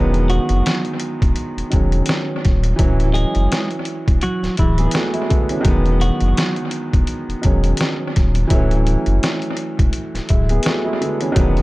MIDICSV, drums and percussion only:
0, 0, Header, 1, 2, 480
1, 0, Start_track
1, 0, Tempo, 714286
1, 1878, Time_signature, 4, 2, 24, 8
1, 7809, End_track
2, 0, Start_track
2, 0, Title_t, "Drums"
2, 95, Note_on_c, 9, 42, 35
2, 162, Note_off_c, 9, 42, 0
2, 199, Note_on_c, 9, 42, 67
2, 266, Note_off_c, 9, 42, 0
2, 330, Note_on_c, 9, 42, 52
2, 397, Note_off_c, 9, 42, 0
2, 444, Note_on_c, 9, 42, 93
2, 449, Note_on_c, 9, 38, 119
2, 511, Note_off_c, 9, 42, 0
2, 516, Note_off_c, 9, 38, 0
2, 570, Note_on_c, 9, 42, 36
2, 637, Note_off_c, 9, 42, 0
2, 669, Note_on_c, 9, 42, 74
2, 737, Note_off_c, 9, 42, 0
2, 820, Note_on_c, 9, 36, 101
2, 822, Note_on_c, 9, 42, 57
2, 887, Note_off_c, 9, 36, 0
2, 889, Note_off_c, 9, 42, 0
2, 912, Note_on_c, 9, 42, 81
2, 979, Note_off_c, 9, 42, 0
2, 1063, Note_on_c, 9, 42, 37
2, 1130, Note_off_c, 9, 42, 0
2, 1153, Note_on_c, 9, 42, 78
2, 1164, Note_on_c, 9, 36, 86
2, 1220, Note_off_c, 9, 42, 0
2, 1232, Note_off_c, 9, 36, 0
2, 1292, Note_on_c, 9, 42, 57
2, 1359, Note_off_c, 9, 42, 0
2, 1382, Note_on_c, 9, 42, 94
2, 1406, Note_on_c, 9, 38, 115
2, 1450, Note_off_c, 9, 42, 0
2, 1473, Note_off_c, 9, 38, 0
2, 1644, Note_on_c, 9, 42, 67
2, 1646, Note_on_c, 9, 38, 34
2, 1649, Note_on_c, 9, 36, 99
2, 1711, Note_off_c, 9, 42, 0
2, 1713, Note_off_c, 9, 38, 0
2, 1716, Note_off_c, 9, 36, 0
2, 1771, Note_on_c, 9, 42, 57
2, 1838, Note_off_c, 9, 42, 0
2, 1874, Note_on_c, 9, 42, 90
2, 1877, Note_on_c, 9, 36, 113
2, 1941, Note_off_c, 9, 42, 0
2, 1944, Note_off_c, 9, 36, 0
2, 2015, Note_on_c, 9, 42, 35
2, 2083, Note_off_c, 9, 42, 0
2, 2119, Note_on_c, 9, 42, 65
2, 2186, Note_off_c, 9, 42, 0
2, 2250, Note_on_c, 9, 42, 50
2, 2317, Note_off_c, 9, 42, 0
2, 2363, Note_on_c, 9, 42, 94
2, 2368, Note_on_c, 9, 38, 117
2, 2431, Note_off_c, 9, 42, 0
2, 2436, Note_off_c, 9, 38, 0
2, 2490, Note_on_c, 9, 42, 37
2, 2557, Note_off_c, 9, 42, 0
2, 2589, Note_on_c, 9, 42, 70
2, 2656, Note_off_c, 9, 42, 0
2, 2740, Note_on_c, 9, 36, 100
2, 2742, Note_on_c, 9, 42, 57
2, 2807, Note_off_c, 9, 36, 0
2, 2809, Note_off_c, 9, 42, 0
2, 2832, Note_on_c, 9, 42, 82
2, 2899, Note_off_c, 9, 42, 0
2, 2980, Note_on_c, 9, 38, 36
2, 2983, Note_on_c, 9, 42, 36
2, 3047, Note_off_c, 9, 38, 0
2, 3050, Note_off_c, 9, 42, 0
2, 3074, Note_on_c, 9, 42, 79
2, 3085, Note_on_c, 9, 36, 87
2, 3141, Note_off_c, 9, 42, 0
2, 3152, Note_off_c, 9, 36, 0
2, 3212, Note_on_c, 9, 42, 58
2, 3279, Note_off_c, 9, 42, 0
2, 3302, Note_on_c, 9, 42, 98
2, 3326, Note_on_c, 9, 38, 119
2, 3369, Note_off_c, 9, 42, 0
2, 3393, Note_off_c, 9, 38, 0
2, 3452, Note_on_c, 9, 42, 35
2, 3520, Note_off_c, 9, 42, 0
2, 3565, Note_on_c, 9, 42, 66
2, 3569, Note_on_c, 9, 36, 100
2, 3632, Note_off_c, 9, 42, 0
2, 3637, Note_off_c, 9, 36, 0
2, 3691, Note_on_c, 9, 42, 58
2, 3758, Note_off_c, 9, 42, 0
2, 3794, Note_on_c, 9, 42, 93
2, 3797, Note_on_c, 9, 36, 115
2, 3861, Note_off_c, 9, 42, 0
2, 3864, Note_off_c, 9, 36, 0
2, 3935, Note_on_c, 9, 42, 35
2, 4002, Note_off_c, 9, 42, 0
2, 4039, Note_on_c, 9, 42, 65
2, 4106, Note_off_c, 9, 42, 0
2, 4170, Note_on_c, 9, 42, 52
2, 4237, Note_off_c, 9, 42, 0
2, 4283, Note_on_c, 9, 42, 92
2, 4288, Note_on_c, 9, 38, 117
2, 4351, Note_off_c, 9, 42, 0
2, 4356, Note_off_c, 9, 38, 0
2, 4411, Note_on_c, 9, 42, 37
2, 4478, Note_off_c, 9, 42, 0
2, 4510, Note_on_c, 9, 42, 74
2, 4577, Note_off_c, 9, 42, 0
2, 4660, Note_on_c, 9, 36, 98
2, 4663, Note_on_c, 9, 42, 57
2, 4727, Note_off_c, 9, 36, 0
2, 4730, Note_off_c, 9, 42, 0
2, 4753, Note_on_c, 9, 42, 81
2, 4820, Note_off_c, 9, 42, 0
2, 4904, Note_on_c, 9, 42, 36
2, 4971, Note_off_c, 9, 42, 0
2, 4994, Note_on_c, 9, 42, 78
2, 5005, Note_on_c, 9, 36, 86
2, 5061, Note_off_c, 9, 42, 0
2, 5072, Note_off_c, 9, 36, 0
2, 5132, Note_on_c, 9, 42, 58
2, 5199, Note_off_c, 9, 42, 0
2, 5223, Note_on_c, 9, 42, 99
2, 5246, Note_on_c, 9, 38, 119
2, 5290, Note_off_c, 9, 42, 0
2, 5313, Note_off_c, 9, 38, 0
2, 5484, Note_on_c, 9, 42, 66
2, 5486, Note_on_c, 9, 38, 35
2, 5489, Note_on_c, 9, 36, 99
2, 5551, Note_off_c, 9, 42, 0
2, 5553, Note_off_c, 9, 38, 0
2, 5556, Note_off_c, 9, 36, 0
2, 5611, Note_on_c, 9, 42, 59
2, 5678, Note_off_c, 9, 42, 0
2, 5714, Note_on_c, 9, 42, 93
2, 5717, Note_on_c, 9, 36, 113
2, 5781, Note_off_c, 9, 42, 0
2, 5784, Note_off_c, 9, 36, 0
2, 5854, Note_on_c, 9, 42, 34
2, 5922, Note_off_c, 9, 42, 0
2, 5958, Note_on_c, 9, 42, 67
2, 6025, Note_off_c, 9, 42, 0
2, 6089, Note_on_c, 9, 42, 52
2, 6157, Note_off_c, 9, 42, 0
2, 6202, Note_on_c, 9, 42, 89
2, 6207, Note_on_c, 9, 38, 118
2, 6270, Note_off_c, 9, 42, 0
2, 6275, Note_off_c, 9, 38, 0
2, 6330, Note_on_c, 9, 42, 35
2, 6397, Note_off_c, 9, 42, 0
2, 6429, Note_on_c, 9, 42, 71
2, 6496, Note_off_c, 9, 42, 0
2, 6580, Note_on_c, 9, 36, 99
2, 6581, Note_on_c, 9, 42, 59
2, 6647, Note_off_c, 9, 36, 0
2, 6649, Note_off_c, 9, 42, 0
2, 6672, Note_on_c, 9, 42, 83
2, 6739, Note_off_c, 9, 42, 0
2, 6820, Note_on_c, 9, 38, 36
2, 6823, Note_on_c, 9, 42, 37
2, 6887, Note_off_c, 9, 38, 0
2, 6890, Note_off_c, 9, 42, 0
2, 6913, Note_on_c, 9, 42, 81
2, 6924, Note_on_c, 9, 36, 84
2, 6980, Note_off_c, 9, 42, 0
2, 6991, Note_off_c, 9, 36, 0
2, 7051, Note_on_c, 9, 42, 60
2, 7119, Note_off_c, 9, 42, 0
2, 7142, Note_on_c, 9, 42, 101
2, 7165, Note_on_c, 9, 38, 118
2, 7209, Note_off_c, 9, 42, 0
2, 7233, Note_off_c, 9, 38, 0
2, 7404, Note_on_c, 9, 42, 68
2, 7471, Note_off_c, 9, 42, 0
2, 7530, Note_on_c, 9, 42, 57
2, 7598, Note_off_c, 9, 42, 0
2, 7634, Note_on_c, 9, 42, 94
2, 7636, Note_on_c, 9, 36, 117
2, 7701, Note_off_c, 9, 42, 0
2, 7704, Note_off_c, 9, 36, 0
2, 7774, Note_on_c, 9, 42, 36
2, 7809, Note_off_c, 9, 42, 0
2, 7809, End_track
0, 0, End_of_file